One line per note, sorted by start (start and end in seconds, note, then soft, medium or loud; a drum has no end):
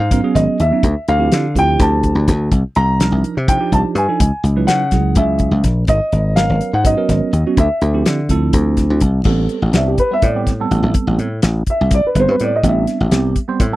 0.00 0.20 G#2 medium
0.00 0.37 F5 medium
0.11 0.20 F#3 medium
0.11 0.20 B3 medium
0.11 0.20 C#4 medium
0.11 0.20 A#4 medium
0.11 kick loud
0.11 closed hi-hat medium
0.23 0.57 F#3 medium
0.23 0.57 B3 medium
0.23 0.57 C#4 medium
0.23 0.57 G#4 medium
0.35 0.46 G#1 medium
0.35 0.57 D#5 medium
0.35 kick medium
0.35 snare soft
0.35 closed hi-hat medium
0.60 0.70 D#2 medium
0.60 1.05 E5 medium
0.60 closed hi-hat medium
0.71 0.83 F#3 medium
0.71 0.83 B3 medium
0.71 0.84 C#4 medium
0.71 0.84 D#4 medium
0.83 0.94 D2 medium
0.83 kick medium
0.83 closed hi-hat medium
1.08 1.29 D2 medium
1.08 1.58 F5 medium
1.08 closed hi-hat soft
1.18 1.44 F3 medium
1.18 1.44 C4 medium
1.18 1.45 E4 medium
1.18 1.45 G4 medium
1.32 1.57 D3 medium
1.32 snare loud
1.32 closed hi-hat medium
1.55 1.76 D2 medium
1.55 2.23 F3 medium
1.55 2.23 C4 medium
1.55 2.23 E4 medium
1.55 2.23 G4 medium
1.55 1.82 G5 loud
1.55 kick medium
1.55 closed hi-hat medium
1.79 2.11 D2 medium
1.79 2.31 A5 medium
1.79 kick loud
1.79 snare soft
1.79 closed hi-hat medium
2.03 kick medium
2.03 closed hi-hat soft
2.15 2.26 D2 medium
2.28 2.49 D2 medium
2.28 kick medium
2.28 snare soft
2.28 closed hi-hat medium
2.52 2.62 C2 medium
2.52 kick loud
2.52 closed hi-hat medium
2.75 3.07 C2 medium
2.75 3.50 A#5 loud
2.75 closed hi-hat soft
3.00 3.34 F3 medium
3.00 3.34 D4 medium
3.00 3.34 D#4 medium
3.00 3.34 A#4 medium
3.00 snare loud
3.00 closed hi-hat medium
3.12 3.22 C2 medium
3.24 closed hi-hat medium
3.37 3.58 C3 medium
3.47 3.56 F3 medium
3.47 3.56 D4 medium
3.47 3.57 D#4 medium
3.47 3.57 C5 medium
3.47 3.71 G5 medium
3.47 kick loud
3.47 closed hi-hat medium
3.60 3.94 F3 medium
3.60 3.94 D4 medium
3.60 3.94 D#4 medium
3.60 3.94 G4 medium
3.72 3.83 C2 medium
3.72 3.79 A5 medium
3.72 kick medium
3.72 closed hi-hat medium
3.95 4.06 G2 medium
3.95 4.42 G#5 medium
3.95 closed hi-hat medium
4.08 4.20 F3 medium
4.08 4.20 D4 medium
4.08 4.21 D#4 medium
4.08 4.21 A4 medium
4.20 4.31 C#2 medium
4.20 kick loud
4.20 closed hi-hat medium
4.44 4.65 C#2 medium
4.44 closed hi-hat medium
4.56 4.81 F#3 medium
4.56 4.81 D#4 medium
4.56 4.82 E4 medium
4.56 4.82 B4 medium
4.67 4.94 C#3 loud
4.67 5.17 F#5 loud
4.67 snare loud
4.67 closed hi-hat medium
4.91 5.13 C#2 medium
4.91 5.59 F#3 medium
4.91 5.60 C#4 medium
4.91 5.60 E4 medium
4.91 5.60 G#4 medium
4.91 kick medium
4.91 snare soft
4.91 closed hi-hat medium
5.15 5.48 C#2 medium
5.15 5.67 E5 medium
5.15 kick loud
5.15 closed hi-hat medium
5.39 kick medium
5.39 closed hi-hat medium
5.51 5.62 C#2 medium
5.64 5.85 A#1 medium
5.64 kick medium
5.64 snare soft
5.64 closed hi-hat medium
5.87 5.99 G#1 medium
5.87 6.38 D#5 loud
5.87 kick loud
5.87 closed hi-hat medium
6.12 6.44 G#1 medium
6.12 closed hi-hat soft
6.36 6.70 F#3 medium
6.36 6.71 B3 medium
6.36 6.71 C#4 medium
6.36 6.71 A#4 medium
6.36 6.74 F5 medium
6.36 snare loud
6.36 closed hi-hat medium
6.49 6.60 G#1 medium
6.61 closed hi-hat medium
6.73 6.94 G#2 medium
6.73 6.85 F#5 medium
6.84 6.93 F#3 medium
6.84 6.93 B3 medium
6.84 6.93 C#4 medium
6.84 6.94 D#4 medium
6.84 7.60 D#5 medium
6.84 kick loud
6.84 closed hi-hat medium
6.97 7.30 F#3 medium
6.97 7.31 B3 medium
6.97 7.31 C#4 medium
6.97 7.31 A#4 medium
7.09 7.19 G#1 medium
7.09 kick medium
7.09 snare soft
7.09 closed hi-hat medium
7.33 7.43 D#2 medium
7.33 closed hi-hat medium
7.46 7.58 F#3 medium
7.46 7.58 B3 medium
7.46 7.58 C#4 medium
7.46 7.58 F#4 medium
7.57 7.68 D2 medium
7.57 8.99 E5 medium
7.57 kick medium
7.57 closed hi-hat medium
7.81 8.02 D2 medium
7.81 closed hi-hat medium
7.93 8.19 F3 medium
7.93 8.19 C4 medium
7.93 8.19 E4 medium
7.93 8.19 G4 medium
8.06 8.31 D3 medium
8.06 snare loud
8.06 closed hi-hat medium
8.29 8.50 D2 medium
8.29 8.97 F3 medium
8.29 8.97 C4 medium
8.29 8.97 E4 medium
8.29 8.97 A4 medium
8.29 kick medium
8.29 closed hi-hat medium
8.53 8.85 D2 medium
8.53 kick loud
8.53 closed hi-hat medium
8.77 kick medium
8.77 snare soft
8.77 closed hi-hat medium
8.90 9.00 D2 medium
9.01 9.23 C2 medium
9.01 kick medium
9.01 closed hi-hat medium
9.24 9.46 A1 medium
9.24 9.59 G3 medium
9.24 9.60 B3 medium
9.24 9.60 C4 medium
9.24 9.60 A4 medium
9.24 kick loud
9.24 crash medium
9.49 closed hi-hat soft
9.62 9.73 A1 medium
9.73 9.95 C2 medium
9.73 10.00 G3 medium
9.73 10.00 B3 medium
9.73 10.00 C4 medium
9.73 10.00 D4 medium
9.73 9.87 E5 medium
9.73 snare loud
9.73 closed hi-hat medium
9.88 9.99 G4 medium
9.98 10.11 B4 medium
9.98 kick medium
9.98 closed hi-hat soft
10.11 10.27 G3 medium
10.11 10.28 B3 medium
10.11 10.28 C4 medium
10.11 10.28 B4 medium
10.11 10.24 E5 medium
10.22 10.65 A2 medium
10.22 10.38 D5 medium
10.22 kick loud
10.22 closed hi-hat medium
10.35 10.51 G3 medium
10.35 10.52 B3 medium
10.35 10.52 C4 medium
10.35 10.52 G4 medium
10.47 kick medium
10.47 snare soft
10.47 closed hi-hat medium
10.60 11.26 G3 medium
10.60 11.27 B3 medium
10.60 11.27 C4 medium
10.60 11.27 A4 loud
10.71 10.81 A1 medium
10.71 closed hi-hat medium
10.83 10.93 A1 medium
10.94 kick medium
10.94 closed hi-hat medium
11.07 11.17 A1 medium
11.19 11.40 A2 medium
11.19 closed hi-hat medium
11.42 11.64 A1 medium
11.42 snare loud
11.42 closed hi-hat medium
11.67 11.92 E5 medium
11.67 kick medium
11.67 closed hi-hat medium
11.81 12.01 C2 medium
11.91 12.05 D5 medium
11.91 kick loud
11.91 snare soft
11.91 closed hi-hat medium
12.07 12.17 B4 medium
12.15 12.26 G1 medium
12.15 12.49 G3 medium
12.15 12.49 B3 medium
12.15 12.49 C4 medium
12.15 12.50 B4 medium
12.15 kick medium
12.15 closed hi-hat medium
12.20 12.29 C5 medium
12.28 12.39 G2 medium
12.28 12.41 B4 medium
12.40 12.61 A2 medium
12.40 closed hi-hat medium
12.44 12.53 D5 medium
12.56 12.65 D#5 medium
12.63 12.85 A1 medium
12.63 12.97 G3 medium
12.63 12.98 B3 medium
12.63 12.98 C4 medium
12.63 12.98 D4 medium
12.63 13.58 E5 medium
12.63 kick medium
12.63 closed hi-hat medium
12.87 snare soft
12.87 closed hi-hat medium
13.00 13.11 A1 medium
13.11 13.33 C2 loud
13.11 13.37 G3 medium
13.11 13.37 B3 medium
13.11 13.38 C4 medium
13.11 13.38 G4 medium
13.11 snare loud
13.11 closed hi-hat medium
13.36 kick medium
13.36 closed hi-hat medium
13.48 13.65 G3 medium
13.48 13.65 B3 medium
13.48 13.65 C4 medium
13.48 13.65 C5 loud
13.60 13.76 A2 medium
13.60 kick loud
13.60 closed hi-hat medium
13.72 13.76 G3 medium
13.72 13.76 B3 medium